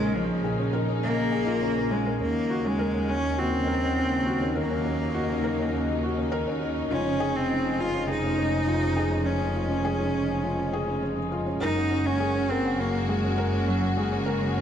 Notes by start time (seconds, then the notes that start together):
Already playing: A#1 C#3 G#3 A#3 D#4 G#4 A#4
0.00 C#4
0.15 F3 C#4
0.44 G#4
0.59 C#4
0.73 A#4
0.88 C#4
1.03 A#3 C#4
1.32 G#4
1.47 F4
1.62 C#4
1.76 A#4
1.91 G#3 C#4
2.06 A#4
2.21 D#2 C#3 F#3 A#3 C#4 D#4
2.50 F#4
2.65 G#3 C#4
2.79 A#4
2.94 C#4
3.08 C#4
3.38 C4 F#4
3.53 C#4
3.67 A#4
3.82 C#4
3.97 C#4
4.26 F#4
4.41 C#4
4.55 A#3 A#4
4.70 C#4
4.85 C#4
5.14 F#4
5.29 C#4
5.44 A#4
5.59 C#4
5.73 C#4
6.03 F#4
6.17 C#4
6.32 A#4
6.47 C#4
6.61 C#4
6.91 F1 F3 G#3 C#4 F4
7.06 C#4
7.20 G#4
7.35 C4 C#4
7.49 C#4
7.79 F4
7.93 C#4
8.08 D#4 G#4
8.23 C#4
8.37 C#4
8.67 F4
8.81 C#4
8.96 G#4
9.11 C#4
9.26 C#4
9.55 F4
9.70 C#4
9.85 G#4
10.00 C#4
10.14 C#4
10.44 F4
10.58 C#4
10.73 G#4
10.88 C#4
11.02 C#4
11.32 F4
11.47 C#4
11.61 F#1 C#3 A#3 D#4 F#4 A#4
11.76 C#4
11.91 C#4
12.06 C#4
12.20 G#4
12.35 C#4
12.50 C4 A#4
12.65 C#4
12.79 A#3 C#4
13.09 G#3 G#4
13.23 C#4
13.38 A#4
13.53 C#4
13.67 F#3 C#4
13.97 G#3 G#4
14.12 C#4
14.26 A#4
14.41 C#4
14.56 C#4